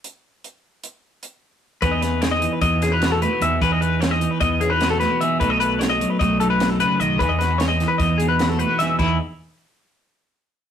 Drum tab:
CC |---------|---------|---------|---------|
HH |x-x-x-x--|xxxxxxxxx|xxxxxxxxx|xxxxxxxxx|
SD |---------|-oo--oo--|--o---oo-|--o---o--|
BD |---------|o---o----|o---o----|o---o----|

CC |---------|x--------|
HH |xxxxxxxxx|---------|
SD |-oooo-o-o|---------|
BD |o---o----|o--------|